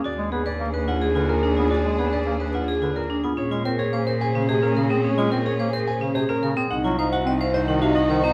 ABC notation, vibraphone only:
X:1
M:3/4
L:1/16
Q:1/4=108
K:Bbphr
V:1 name="Vibraphone"
G z A c z c F A F B =D F | G z A c z c F A F B =D F | [K:Bbm] D F B A c B c D A D B C | D F B A c B c D A D B C |
E F c G e c e E G E c C |]